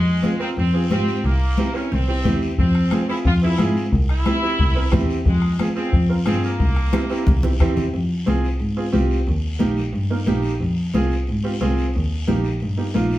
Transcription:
Already playing: saxophone section G#3
0.22 upright piano C4 F4 G#4, high conga, short guiro
0.39 upright piano C4 F4 A#4, saxophone section C4, short guiro
0.57 double bass F2, saxophone section C4, high conga, long guiro
0.73 upright piano C4 F4 G#4
0.90 double bass G#2, saxophone section C4, upright piano C4 F4 G4, high conga, short guiro
1.07 short guiro
1.24 double bass C2, saxophone section A#3, high conga, long guiro
1.57 upright piano C4 E4 G4, high conga, short guiro
1.74 upright piano C4 E4 A#4, saxophone section C#4, short guiro
1.92 double bass C2, saxophone section C4, high conga, low conga, long guiro
2.08 upright piano C4 E4 G4, saxophone section C4
2.24 double bass E2, upright piano C4 E4 G4, high conga, low conga, short guiro
2.41 short guiro
2.58 double bass F2, saxophone section C4, bombo low, high conga, long guiro
2.75 bombo rim
2.91 upright piano C4 F4 G#4, bombo rim, high conga, short guiro
3.08 upright piano C4 F4 G#4, saxophone section E4, short guiro
3.25 double bass F2, saxophone section F4, bombo low, high conga, long guiro
3.42 upright piano C4 F4 G#4, saxophone section E4
3.58 double bass G#2, upright piano C4 F4 G#4, bombo rim, high conga, short guiro
3.76 short guiro
3.92 double bass C2, bombo low, high conga, long guiro
4.09 saxophone section E4, bombo rim
4.26 upright piano C4 E4 G4, bombo rim, high conga, short guiro
4.42 upright piano C4 E4 G4, short guiro
4.59 double bass C2, bombo low, high conga, long guiro
4.75 upright piano C4 E4 A#4
4.92 double bass E2, upright piano C4 E4 G4, bombo low, bombo rim, high conga, low conga, short guiro
5.09 short guiro
5.25 double bass F2, saxophone section G#3, bombo low, high conga, long guiro
5.42 bombo rim
5.59 upright piano C4 F4 G#4, bombo rim, high conga, short guiro
5.75 saxophone section C4, upright piano C4 F4 G#4, short guiro
5.92 double bass F2, bombo low, high conga, long guiro
6.09 upright piano C4 F4 A#4
6.25 double bass G2, upright piano C4 F4 G#4, saxophone section C4, bombo rim, high conga, short guiro
6.43 saxophone section A#3, short guiro
6.60 double bass C2, bombo low, high conga, long guiro
6.76 bombo rim
6.92 upright piano C4 E4 G4, bombo rim, high conga, short guiro
7.09 upright piano C4 E4 G4, short guiro
7.26 double bass C2, bombo low, low conga, long guiro
7.43 upright piano C4 E4 G4, low conga
7.59 double bass E2, upright piano C4 E4 G4, bombo low, bombo rim, short guiro
7.76 low conga, short guiro
7.94 double bass F2, high conga, long guiro
8.26 double bass C2, upright piano C4 F4 G#4, high conga, short guiro
8.44 short guiro
8.60 double bass G#2, high conga, long guiro
8.77 upright piano C4 F4 G#4
8.92 double bass C2, upright piano C4 F4 G4, high conga, short guiro
9.10 short guiro
9.27 double bass D#2, high conga, long guiro
9.59 double bass A#1, upright piano A#3 D#4 G4, high conga, short guiro
9.77 short guiro
9.93 double bass G2, high conga, long guiro
10.10 upright piano A#3 D#4 A#4
10.26 double bass A#1, upright piano A#3 D#4 G4, high conga, short guiro
10.42 short guiro
10.60 double bass F2, high conga, long guiro
10.93 double bass C2, upright piano C4 F4 G#4, high conga, short guiro
11.10 short guiro
11.27 double bass G#2, high conga, long guiro
11.44 upright piano C4 F4 G4
11.61 double bass C2, upright piano C4 F4 G#4, high conga, short guiro
11.77 short guiro
11.93 double bass D#2, high conga, long guiro
12.27 double bass A#1, upright piano A#3 D#4 G4, high conga, short guiro
12.44 short guiro
12.60 double bass G2, high conga, long guiro
12.77 upright piano A#3 D#4 G4
12.94 double bass A#1, upright piano A#3 D#4 F4, high conga, short guiro
13.11 short guiro

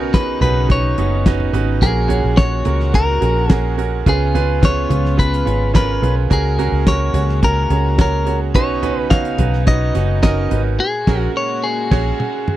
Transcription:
Already playing: fingered electric bass B1, upright piano B2 C#4 D#4 F#4 A#4 B4, string section C#3 B3 D#4, clean electric guitar F#4
0.13 upright piano C#4 D#4 F#4 G#4, clean electric guitar B4, kick, snare, clap, closed hi-hat
0.41 fingered electric bass B1, upright piano C#4 D#4 F#4 B4, clean electric guitar B4, closed hi-hat, floor tom
0.69 upright piano C#4 D#4 F#4 B4, clean electric guitar C#5, kick, closed hi-hat
0.98 fingered electric bass F#1, upright piano C#4 D#4 F#4 B4, closed hi-hat
1.26 upright piano C#4 D#4 F#4 B4, kick, snare, clap, closed hi-hat
1.40 floor tom
1.53 fingered electric bass G#1, upright piano C#4 D#4 F#4 B4, closed hi-hat
1.82 fingered electric bass A#1, upright piano A#2 C#4 F#4 G#4 A#4, string section A#2 G#3 F#4, clean electric guitar G#4, kick, closed hi-hat
2.08 upright piano C#4 F#4 G#4 C#5, closed hi-hat, floor tom
2.24 fingered electric bass A#1
2.36 upright piano C#4 F#4 G#4 C#5, clean electric guitar C#5, kick, snare, clap, closed hi-hat
2.65 fingered electric bass C#2, upright piano C#4 F#4 G#4 A#4, closed hi-hat, floor tom
2.80 snare
2.93 upright piano C#4 F#4 G#4 A#4, clean electric guitar A#4, kick, closed hi-hat
3.21 fingered electric bass A#1, upright piano C#4 F#4 G#4 A#4, closed hi-hat
3.50 upright piano C#4 F#4 G#4 A#4, clean electric guitar G#4, kick, snare, clap, closed hi-hat
3.77 upright piano C#4 F#4 G#4 A#4, closed hi-hat
4.06 fingered electric bass C#2, string section C#3 B3 F4, upright piano C#3 C#4 F4 G#4 B4, clean electric guitar G#4, kick, closed hi-hat
4.35 upright piano C#4 F4 G#4 B4, closed hi-hat, floor tom
4.62 upright piano C#4 F4 G#4 B4, clean electric guitar C#5, kick, snare, clap, closed hi-hat
4.89 fingered electric bass C#2, upright piano C#4 F4 G#4 B4, closed hi-hat, floor tom
5.05 snare
5.17 upright piano C#4 F4 G#4 B4, clean electric guitar B4, kick, closed hi-hat
5.34 closed hi-hat
5.45 fingered electric bass G#1, upright piano C#4 F4 G#4 C#5, closed hi-hat
5.74 upright piano C#4 F4 G#4 A#4, clean electric guitar B4, kick, snare, clap, closed hi-hat
6.02 fingered electric bass B1, upright piano C#4 F4 G#4 B4, closed hi-hat
6.30 fingered electric bass C#2, string section A#2 G#3 F#4, upright piano C#3 C#4 F#4 G#4 A#4, clean electric guitar G#4, kick, closed hi-hat
6.59 upright piano C#4 F#4 G#4 A#4, closed hi-hat, floor tom
6.72 fingered electric bass C#2
6.87 upright piano C#4 F#4 G#4 A#4, clean electric guitar C#5, kick, snare, clap, closed hi-hat
7.13 fingered electric bass C#2, upright piano C#4 F#4 G#4 C#5, closed hi-hat, floor tom
7.29 snare
7.42 upright piano C#4 F#4 G#4 A#4, clean electric guitar A#4, kick, closed hi-hat
7.70 fingered electric bass C#2, upright piano C#4 F#4 G#4 C#5, closed hi-hat
7.98 upright piano C#4 F#4 G#4 C#5, clean electric guitar A#4, kick, snare, clap, closed hi-hat
8.26 upright piano C#4 F#4 G#4 C#5, closed hi-hat
8.53 fingered electric bass B1, upright piano B2 C#4 D#4 F#4 B4, string section C#3 B3 D#4, clean electric guitar C#5, kick, closed hi-hat
8.82 upright piano C#4 D#4 F#4 B4, closed hi-hat, floor tom
9.10 upright piano C#4 D#4 F#4 C#5, clean electric guitar F5, kick, snare, clap, closed hi-hat
9.25 closed hi-hat
9.38 fingered electric bass B1, upright piano C#4 D#4 F#4 B4, closed hi-hat, floor tom
9.53 snare
9.66 upright piano C#4 D#4 F#4 B4, clean electric guitar D#5, kick, closed hi-hat
9.95 fingered electric bass F#1, upright piano C#4 D#4 F#4 B4, closed hi-hat
10.23 upright piano C#4 D#4 F#4 A#4, clean electric guitar D#5, kick, snare, clap, closed hi-hat
10.50 fingered electric bass G#1, upright piano C#4 D#4 F#4 B4, closed hi-hat
10.80 string section A#2 G#3 F#4, clean electric guitar G#4
11.07 fingered electric bass A#1, upright piano C#4 F#4 G#4 A#4, kick, snare, crash
11.20 clean electric guitar F#4
11.37 clean electric guitar C#5
11.64 clean electric guitar G#4
11.91 fingered electric bass A#1, upright piano C#4 F#4 G#4 C#5, kick, snare, crash
12.20 mid tom
12.48 mid tom

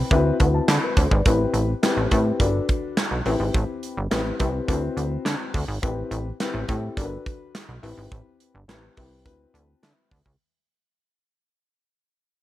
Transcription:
Already playing: grand piano E4 G4 B4
0.11 analog synth bass D2, grand piano C4 E4 F#4 B4 E5, kick, closed hi-hat
0.40 analog synth bass D2, grand piano C4 E4 F#4 B4 F#5, kick, closed hi-hat
0.54 grand piano A5
0.68 analog synth bass D3, grand piano B5, snare, clap, closed hi-hat
0.84 grand piano B4
0.97 analog synth bass D2, grand piano A4 C5, kick, closed hi-hat
1.11 analog synth bass G#1, grand piano B4 D5, kick
1.26 analog synth bass A1, grand piano C4 E4 G4 B4, kick, closed hi-hat
1.54 analog synth bass A1, closed hi-hat
1.83 grand piano C4 E4 G4 B4, snare, clap, closed hi-hat
1.97 analog synth bass A1
2.11 analog synth bass A2, grand piano C4 E4 G4 B4, kick, closed hi-hat
2.40 analog synth bass G1, grand piano D4 F#4 A4 B4, kick, closed hi-hat
2.69 kick, closed hi-hat
2.97 snare, clap, closed hi-hat
3.11 analog synth bass B1
3.26 analog synth bass A1, grand piano C4 E4 G4 B4, open hi-hat
3.40 analog synth bass G#1
3.54 analog synth bass A1, kick, closed hi-hat
3.83 closed hi-hat
3.97 analog synth bass G1
4.11 analog synth bass A1, grand piano C4 E4 G4 B4, snare, clap, closed hi-hat
4.39 analog synth bass C2, grand piano C4 E4 G4 B4, kick, closed hi-hat
4.68 analog synth bass D2, grand piano C4 E4 F#4 B4, kick, closed hi-hat
4.97 analog synth bass D2, closed hi-hat
5.25 analog synth bass D3, snare, clap, closed hi-hat
5.54 analog synth bass D2, kick, open hi-hat
5.68 analog synth bass G#1
5.82 analog synth bass A1, grand piano C4 E4 G4 B4, kick, closed hi-hat
6.11 analog synth bass A1, closed hi-hat
6.40 grand piano C4 E4 G4 B4, snare, clap, closed hi-hat
6.54 analog synth bass A1
6.68 analog synth bass A2, grand piano C4 E4 G4 A4, kick, closed hi-hat
6.97 analog synth bass G1, grand piano D4 F#4 A4 A#4, kick, closed hi-hat
7.04 grand piano B4
7.26 kick, closed hi-hat
7.55 snare, clap, closed hi-hat
7.69 analog synth bass B1
7.82 analog synth bass A1, grand piano C4 E4 G4 B4, open hi-hat
7.98 analog synth bass G#1
8.12 analog synth bass A1, kick, closed hi-hat
8.40 closed hi-hat
8.55 analog synth bass G1
8.68 analog synth bass A1, grand piano C4 E4 G4 B4, snare, clap, closed hi-hat
8.97 analog synth bass C2, grand piano C4 E4 G4 B4, kick, open hi-hat
9.25 analog synth bass D2, grand piano C4 E4 F#4 B4, kick, closed hi-hat
9.54 analog synth bass D2, grand piano A5, closed hi-hat
9.83 analog synth bass D3, grand piano E5, snare, clap, closed hi-hat
10.11 analog synth bass D2, kick, open hi-hat
10.26 analog synth bass C#2, kick

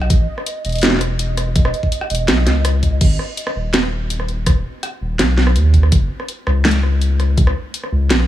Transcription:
Already playing: synth texture D#5
0.01 cross-stick
0.10 sub bass A1, kick, closed hi-hat
0.38 cross-stick
0.46 closed hi-hat
0.65 sub bass E1, closed hi-hat
0.69 closed hi-hat
0.72 closed hi-hat
0.75 closed hi-hat
0.78 closed hi-hat
0.81 snare, closed hi-hat
0.84 snare, closed hi-hat
0.88 snare
0.90 snare
0.92 snare
0.94 snare
0.97 snare
0.99 cross-stick, snare, closed hi-hat
1.19 closed hi-hat
1.37 cross-stick, closed hi-hat
1.56 kick, closed hi-hat
1.65 cross-stick
1.74 closed hi-hat
1.83 kick
1.92 closed hi-hat
2.01 cross-stick
2.10 sub bass E1, closed hi-hat
2.15 closed hi-hat
2.28 sub bass B1, snare, closed hi-hat
2.38 cross-stick
2.46 sub bass C#2, snare, closed hi-hat
2.65 cross-stick, closed hi-hat
2.83 kick, closed hi-hat
3.01 sub bass G#1, kick, closed hi-hat, crash
3.19 cross-stick
3.37 closed hi-hat
3.47 cross-stick
3.56 sub bass D#1
3.74 snare, closed hi-hat
3.83 cross-stick
4.10 closed hi-hat
4.20 cross-stick
4.28 closed hi-hat
4.46 kick, cross-stick, closed hi-hat
4.83 cross-stick, closed hi-hat
5.01 sub bass D#1
5.19 sub bass B1, cross-stick, snare, closed hi-hat
5.38 snare
5.47 cross-stick
5.55 sub bass D#2, closed hi-hat
5.74 kick, closed hi-hat
5.83 cross-stick
5.92 sub bass F#1, kick, closed hi-hat
6.20 cross-stick
6.28 closed hi-hat
6.47 sub bass C#2, cross-stick
6.65 snare, closed hi-hat
6.68 closed hi-hat
6.71 closed hi-hat
6.83 cross-stick
7.01 closed hi-hat
7.20 cross-stick, closed hi-hat
7.37 kick, closed hi-hat
7.47 cross-stick
7.74 closed hi-hat
7.83 cross-stick
7.92 sub bass C#2
8.10 sub bass A#1, snare, closed hi-hat
8.20 cross-stick

